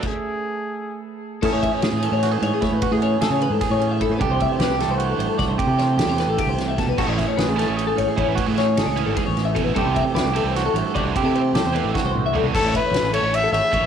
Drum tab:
CC |x------|x------|-------|-------|
RD |-------|-xxxxxx|xxxxxxx|xxxxxxx|
SD |-------|--o-o-o|--o-o--|--oo--o|
T2 |-------|-------|-------|-------|
FT |-------|-------|-------|-------|
BD |o------|oo----o|o---o-o|oo----o|

CC |-------|x------|-------|-------|
RD |xxxxxxx|-xxxxxx|xxxxxxx|xxxxxxx|
SD |-ooo-oo|-ooo---|-oo--o-|--o-o--|
T2 |-------|-------|-------|-------|
FT |-------|-------|-------|-------|
BD |o---o-o|oo----o|o---o-o|oo----o|

CC |-------|x------|
RD |xxxx---|-xxxxxx|
SD |--o-o--|--o----|
T2 |-----o-|-------|
FT |------o|-------|
BD |o---o--|oo----o|